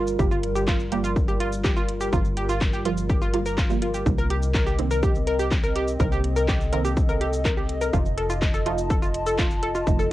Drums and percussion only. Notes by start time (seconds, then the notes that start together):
0.07 shaker
0.19 kick, shaker
0.31 shaker
0.43 closed hi-hat
0.56 shaker
0.68 kick, clap, shaker
0.80 shaker
0.92 closed hi-hat
1.04 shaker
1.16 kick, shaker
1.28 shaker
1.40 closed hi-hat
1.52 shaker
1.64 kick, clap, shaker
1.76 shaker
1.89 closed hi-hat
2.01 shaker
2.13 kick, shaker
2.25 shaker
2.37 closed hi-hat
2.49 shaker
2.61 kick, clap, shaker
2.73 shaker
2.85 closed hi-hat
2.97 shaker
3.09 kick, shaker
3.22 shaker
3.34 closed hi-hat
3.46 shaker
3.58 kick, clap, shaker
3.70 shaker
3.82 closed hi-hat
3.94 shaker
4.06 kick, shaker
4.18 shaker
4.30 closed hi-hat
4.43 shaker
4.55 kick, clap, shaker
4.67 shaker
4.79 closed hi-hat
4.91 shaker
5.03 kick, shaker
5.15 shaker
5.27 closed hi-hat
5.39 shaker
5.51 kick, clap, shaker
5.64 shaker
5.76 closed hi-hat
5.88 shaker
6.00 kick, shaker
6.12 shaker
6.24 closed hi-hat
6.36 shaker
6.48 kick, clap, shaker
6.60 shaker
6.72 closed hi-hat
6.85 shaker
6.97 kick, shaker
7.09 shaker
7.21 closed hi-hat
7.33 shaker
7.45 kick, clap, shaker
7.57 shaker
7.69 closed hi-hat
7.81 shaker
7.93 kick, shaker
8.06 shaker
8.18 closed hi-hat
8.30 shaker
8.42 kick, clap, shaker
8.54 shaker
8.66 closed hi-hat
8.78 shaker
8.90 kick, shaker
9.02 shaker
9.14 closed hi-hat
9.27 shaker
9.39 kick, clap, shaker
9.51 shaker
9.63 closed hi-hat
9.75 shaker
9.87 kick, shaker
9.99 shaker